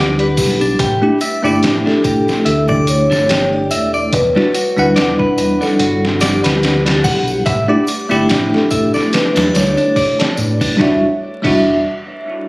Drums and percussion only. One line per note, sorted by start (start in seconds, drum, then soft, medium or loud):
0.19 closed hi-hat soft
0.37 kick loud
0.37 open hi-hat medium
0.37 tambourine medium
0.61 tambourine medium
0.79 kick loud
0.79 closed hi-hat medium
0.79 tambourine soft
1.20 closed hi-hat medium
1.20 tambourine medium
1.20 triangle medium
1.45 tambourine medium
1.63 snare loud
1.63 closed hi-hat medium
1.63 tambourine soft
1.87 snare soft
2.04 kick medium
2.04 closed hi-hat medium
2.04 tambourine medium
2.28 snare soft
2.28 tambourine soft
2.46 closed hi-hat medium
2.46 tambourine soft
2.68 kick loud
2.68 triangle medium
2.87 closed hi-hat medium
2.87 tambourine medium
3.12 snare soft
3.12 tambourine medium
3.29 snare loud
3.29 closed hi-hat medium
3.29 tambourine soft
3.71 closed hi-hat medium
3.71 tambourine medium
3.94 tambourine soft
4.13 kick loud
4.13 closed hi-hat medium
4.13 tambourine soft
4.37 snare soft
4.54 closed hi-hat medium
4.54 tambourine medium
4.78 tambourine soft
4.96 snare loud
4.96 closed hi-hat loud
4.96 tambourine soft
5.19 kick medium
5.38 closed hi-hat medium
5.38 tambourine medium
5.62 snare soft
5.62 tambourine soft
5.79 closed hi-hat medium
5.79 tambourine soft
6.05 snare medium
6.21 snare loud
6.21 closed hi-hat medium
6.21 tambourine medium
6.44 snare loud
6.44 closed hi-hat medium
6.44 tambourine soft
6.63 snare loud
6.63 closed hi-hat medium
6.63 tambourine soft
6.86 snare loud
6.86 closed hi-hat medium
7.04 kick loud
7.04 open hi-hat medium
7.04 tambourine medium
7.28 tambourine soft
7.46 kick loud
7.46 closed hi-hat medium
7.46 tambourine soft
7.87 closed hi-hat medium
7.87 tambourine medium
7.87 triangle medium
8.11 tambourine medium
8.29 snare loud
8.29 closed hi-hat medium
8.29 tambourine soft
8.54 snare soft
8.70 kick medium
8.70 closed hi-hat medium
8.70 tambourine medium
8.94 snare soft
8.94 tambourine soft
9.13 snare loud
9.13 closed hi-hat medium
9.13 tambourine soft
9.36 snare loud
9.36 closed hi-hat medium
9.36 triangle medium
9.55 snare loud
9.55 closed hi-hat medium
9.55 tambourine loud
9.77 closed hi-hat soft
9.77 tambourine soft
9.96 kick medium
9.96 open hi-hat medium
9.96 tambourine soft
10.20 snare loud
10.20 closed hi-hat medium
10.37 closed hi-hat soft
10.37 tambourine medium
10.61 kick medium
10.61 open hi-hat medium
10.61 tambourine medium
10.80 kick loud
10.80 snare medium
11.44 kick loud
11.44 crash medium